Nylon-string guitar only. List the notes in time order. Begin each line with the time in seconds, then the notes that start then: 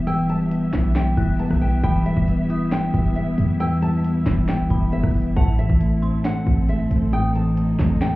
0.07 G5
0.30 A5
0.96 G5
1.39 A5
1.61 G5
1.83 G5
2.06 E5
2.72 G5
3.16 E5
3.60 G5
3.82 A5
4.49 G5
4.93 E5
5.36 F#5
5.59 E5
6.25 F#5
6.69 E5
7.13 G5
7.35 A5
8.01 G5